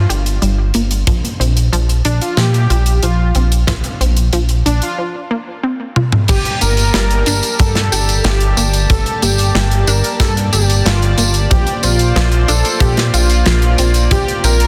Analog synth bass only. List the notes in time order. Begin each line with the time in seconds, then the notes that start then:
0.10 G1
0.42 G1
0.75 G1
1.07 A#1
1.40 A#1
1.72 A#1
2.05 A#1
2.38 A#2
2.70 A#1
3.03 A#1
3.35 A#1
3.68 A#1
4.01 A#1
4.33 A#1
4.66 A#1
6.29 G1
6.62 G1
6.94 G1
7.27 G1
7.60 G2
7.92 G1
8.24 G1
8.57 G1
8.90 G1
9.22 G1
9.55 G1
9.87 G1
10.20 G2
10.53 G1
10.85 G1
11.18 G1
11.51 A#1
11.83 A#1
12.16 A#1
12.49 A#1
12.80 A#2
13.14 A#1
13.46 A#1
13.79 A#1
14.11 A#1
14.44 A#1